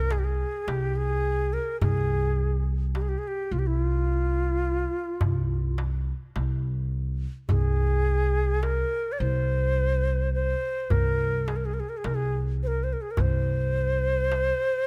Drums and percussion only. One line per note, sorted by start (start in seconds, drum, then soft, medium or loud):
0.11 darbuka tek medium
0.68 darbuka tek medium
1.81 darbuka dum medium
2.39 darbuka ka soft
2.95 darbuka tek medium
3.23 darbuka ka soft
4.08 darbuka ka soft
5.21 darbuka dum medium
5.78 darbuka tek medium
6.36 darbuka tek medium
7.49 darbuka dum medium
8.06 darbuka ka soft
8.63 darbuka tek medium
8.91 darbuka ka soft
9.76 darbuka ka soft
10.90 darbuka dum medium
11.48 darbuka tek medium
12.04 darbuka tek medium
13.17 darbuka dum medium
13.74 darbuka ka soft
14.32 darbuka tek medium
14.61 darbuka ka soft